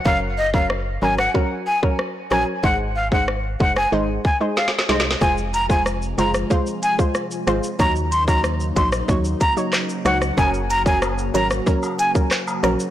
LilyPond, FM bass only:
\new Staff \with { instrumentName = "FM bass" } { \clef bass \time 4/4 \key f \phrygian \tempo 4 = 93 ges,,4. aes,,8 r4. bes,,16 r16 | aes,,4. ges,,8 aes,,8 r4 c,8 | f,,4. ges,,8 r4. aes,,16 r16 | ees,4. bes,,8 ees,8 r4 des,8 |
ges,,4. aes,,8 r4. bes,,16 r16 | }